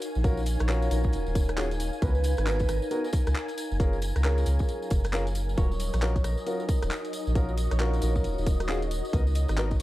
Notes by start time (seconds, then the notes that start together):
Already playing: D#4 A#4 C#5 F5 G#5
0.02 open hi-hat, tambourine
0.15 A#1, tambourine
0.24 C#4 F4 F#4 A#4, kick, closed hi-hat, tambourine
0.37 tambourine
0.46 open hi-hat, tambourine
0.59 A#1 C#5, cross-stick, closed hi-hat, tambourine
0.68 C#4 F4 F#4 A#4, clap, tambourine
0.82 closed hi-hat, tambourine
0.91 A#1 A#4, open hi-hat, tambourine
1.04 kick, tambourine
1.13 D#1, closed hi-hat, tambourine
1.26 D#1, tambourine
1.35 kick, open hi-hat, tambourine
1.49 cross-stick, closed hi-hat, tambourine
1.58 C#4 F4 F#4 G#4, clap, tambourine
1.71 closed hi-hat, tambourine
1.80 open hi-hat, tambourine
1.93 tambourine
2.02 C#2 B3 D#4 F#4 A#4 B4, kick, closed hi-hat, tambourine
2.15 tambourine
2.24 open hi-hat, tambourine
2.37 G#1 B4, cross-stick, closed hi-hat, tambourine
2.46 B3 D#4 F#4 A#4 A#5, clap, tambourine
2.59 kick, closed hi-hat, tambourine
2.69 G#1 A#4, cross-stick, open hi-hat, tambourine
2.82 tambourine
2.91 B3 D#4 F#4 A#4, closed hi-hat, tambourine
3.04 A#4, tambourine
3.13 kick, open hi-hat, tambourine
3.27 C#2, cross-stick, closed hi-hat, tambourine
3.35 clap, tambourine
3.48 closed hi-hat, tambourine
3.58 open hi-hat, tambourine
3.71 F#1, tambourine
3.80 F#3 C#4 F4 G#4 A#4, kick, closed hi-hat, tambourine
3.93 tambourine
4.02 A#4, open hi-hat, tambourine
4.16 C#2 A#4, cross-stick, closed hi-hat, tambourine
4.24 C#4 F4 G#4 A#4, clap, tambourine
4.32 F5
4.38 closed hi-hat, tambourine
4.46 C#2 G#4, open hi-hat, tambourine
4.59 G#5, kick, tambourine
4.68 closed hi-hat, tambourine
4.82 tambourine
4.90 F#1, kick, open hi-hat, tambourine
5.04 cross-stick, closed hi-hat, tambourine
5.13 C#4 F4 G#4 A#4, clap, tambourine
5.27 closed hi-hat, tambourine
5.35 open hi-hat, tambourine
5.49 tambourine
5.57 D#1 C#4 D#4 F4 F#4 A#4 C#5 D#5, kick, closed hi-hat, tambourine
5.71 F#4 C#5, tambourine
5.80 open hi-hat, tambourine
5.93 A#1 C#5, cross-stick, closed hi-hat, tambourine
6.02 C#4 F4 F#4 A#4, clap, tambourine
6.16 kick, closed hi-hat, tambourine
6.24 A#1 A#4, cross-stick, open hi-hat, tambourine
6.38 tambourine
6.47 C#4 F4 F#4 A#4, closed hi-hat, tambourine
6.60 A#4, tambourine
6.69 kick, open hi-hat, tambourine
6.82 D#1, cross-stick, closed hi-hat, tambourine
6.91 clap, tambourine
7.05 closed hi-hat, tambourine
7.13 open hi-hat, tambourine
7.27 A#1, tambourine
7.35 C#4 F4 F#4 A#4, kick, closed hi-hat, tambourine
7.49 tambourine
7.57 open hi-hat, tambourine
7.71 A#1 C#5, cross-stick, closed hi-hat, tambourine
7.80 C#4 F4 F#4 A#4, clap, tambourine
7.94 closed hi-hat, tambourine
8.02 A#1 A#4, open hi-hat, tambourine
8.15 kick, tambourine
8.24 D#1, closed hi-hat, tambourine
8.38 D#1, tambourine
8.46 kick, open hi-hat, tambourine
8.60 cross-stick, closed hi-hat, tambourine
8.69 C#4 F4 F#4 G#4, clap, tambourine
8.82 closed hi-hat, tambourine
8.91 open hi-hat, tambourine
9.05 tambourine
9.13 C#2 B3 D#4 F#4 A#4 D#5, kick, closed hi-hat, tambourine
9.27 A#5, tambourine
9.35 open hi-hat, tambourine
9.44 B4
9.48 G#1 D#5, cross-stick, closed hi-hat, tambourine
9.58 B3 D#4 F#4 A#4, clap, tambourine
9.71 kick, closed hi-hat, tambourine